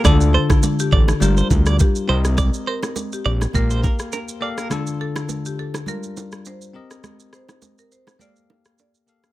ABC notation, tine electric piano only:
X:1
M:4/4
L:1/16
Q:"Swing 16ths" 1/4=103
K:Gm
V:1 name="Tine electric piano"
[D,DFA]4- [D,DFA] z3 [G,DFB]4 z2 [CGBe]2- | [CGBe]4 z4 [B,GBf]4 z2 [B,GAf]2 | [D,DFA]4- [D,DFA] z3 [G,DFB]4 z2 [CGBe]2- | [CGBe]4 z4 [B,GAf]4 z2 [B,GAf]2 |]